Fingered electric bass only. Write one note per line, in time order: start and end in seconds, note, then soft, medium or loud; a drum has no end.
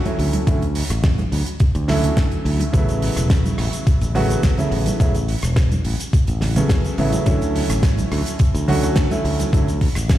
0.19 0.37 D2 medium
0.47 0.82 D2 medium
0.90 1.24 A1 medium
1.32 1.41 D2 medium
1.75 2.09 D2 medium
2.17 2.26 D2 loud
2.45 2.64 D2 medium
2.74 3.08 A1 medium
3.17 3.50 E1 medium
3.58 3.68 A1 medium
3.87 muted fingered electric bass stroke soft
4.01 4.35 A1 medium
4.43 4.53 A1 loud
4.71 4.90 A1 medium
5.00 5.34 A1 medium
5.43 5.77 E1 medium
5.85 5.94 A1 medium
6.28 6.62 A1 loud
6.70 6.79 A1 loud
6.98 7.16 A1 medium
7.26 7.61 D2 loud
7.70 8.03 A1 medium
8.12 8.21 D2 medium
8.40 muted fingered electric bass stroke soft
8.54 8.88 D2 loud
8.96 9.06 D2 loud
9.24 9.43 D2 loud
9.53 9.87 D2 loud
9.96 10.18 A1 loud